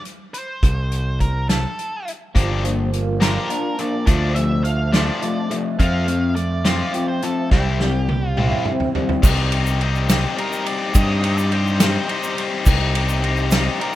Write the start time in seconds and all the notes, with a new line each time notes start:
0.05 closed hi-hat
0.34 C5, closed hi-hat
0.63 C2, kick, closed hi-hat
0.92 closed hi-hat
1.20 A#4, kick, closed hi-hat
1.49 A4, snare, closed hi-hat
1.79 closed hi-hat
2.08 closed hi-hat
2.35 G1 F3 A#3 D4 G4, kick, closed hi-hat
2.64 F3 A#3 D4, closed hi-hat
2.93 A#3, closed hi-hat
3.20 A#3 D4 F4 G4 A#4, snare, closed hi-hat
3.49 A#3 D4, closed hi-hat
3.79 A#3 D4 D5, closed hi-hat
4.07 D2 F3 A3 D4 D5, kick, closed hi-hat
4.35 F3 A3 E5, closed hi-hat
4.64 A3 F5, closed hi-hat
4.93 F3 A3 D4 F4 D5, snare, closed hi-hat
5.21 F3 A3 D4, closed hi-hat
5.51 F3 A3, closed hi-hat
5.79 F2 F3 A3 C4 F4 F5, kick, closed hi-hat
6.07 F3 A3 C4, closed hi-hat
6.36 A3 D5, closed hi-hat
6.65 F3 C4 F4, snare, closed hi-hat
6.94 F3 C4, closed hi-hat
7.08 C5
7.22 F3 A3 C4 A4, closed hi-hat
7.51 C2 G3 C4 E4 G4, kick, snare
7.80 G3 C4, snare
8.09 G3, high tom
8.27 F4
8.37 G3 C4 E4, mid tom
8.51 mid tom
8.65 G3 C4, mid tom
8.80 floor tom
8.95 G3 C4, floor tom
9.09 floor tom
9.22 C2 G3 C4 D#4 G4 C5 G5 A#5, kick, crash, shaker
9.52 C4 D#4 G4, ride
9.66 shaker
9.79 G3 C4 D#4 G4, ride
9.95 shaker
10.08 G3 C4 D#4 G4, snare, ride, shaker
10.36 G3 C4 D#4 G4 A#4, ride
10.53 shaker
10.66 D5, ride
10.93 G2 G3 C4 D#4 G4 D#5, kick, ride, shaker
11.22 C4 D#4 G4, ride
11.38 D5, shaker
11.52 G3 C4 D#4 G4 C5, ride
11.67 shaker
11.80 G3 C4 D#4 G4 C5, snare, ride, shaker
12.08 G3 C4 D#4 G4, ride
12.23 shaker
12.38 ride
12.65 C2 G3 C4 D#4 G4 F5, kick, crash, shaker
12.94 C4 D#4 G4, ride
13.09 shaker
13.23 G3 C4 D#4 G4, ride
13.37 shaker
13.51 C4 D#4 G4, snare, ride, shaker
13.55 G3
13.80 G3 C4 D#4 G4 A#4, ride